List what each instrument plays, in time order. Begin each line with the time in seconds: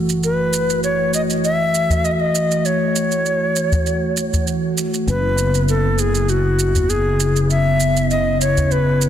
Already playing: fretless electric bass F#1, analog synth pad E3 A3 F#4
0.10 shaker
0.23 native american-style wooden flute B4, shaker
0.53 shaker
0.70 shaker
0.84 native american-style wooden flute C#5, shaker
1.14 native american-style wooden flute D#5, shaker
1.30 shaker
1.44 native american-style wooden flute E5, shaker
1.75 shaker
1.89 udu, shaker
2.05 native american-style wooden flute D#5, shaker
2.12 native american-style wooden flute E5
2.20 native american-style wooden flute D#5
2.35 shaker
2.52 shaker
2.65 native american-style wooden flute C#5, shaker
2.96 shaker
3.12 shaker
3.26 shaker
3.56 shaker
3.72 udu, shaker
3.87 shaker
4.17 shaker
4.33 udu, shaker
4.47 shaker
4.78 shaker
4.94 shaker
5.07 fretless electric bass F#1, analog synth pad C#3 B3 E4, native american-style wooden flute B4, shaker
5.38 shaker
5.55 shaker
5.68 native american-style wooden flute A4, shaker
5.99 native american-style wooden flute G#4, shaker
6.15 shaker
6.29 native american-style wooden flute F#4, shaker
6.59 shaker
6.74 udu, shaker
6.90 native american-style wooden flute G#4, shaker
7.20 shaker
7.36 shaker
7.50 native american-style wooden flute E5, shaker
7.80 shaker
7.97 shaker
8.11 native american-style wooden flute D#5, shaker
8.41 native american-style wooden flute C#5, shaker
8.57 udu, shaker
8.71 native american-style wooden flute B4, shaker
9.02 shaker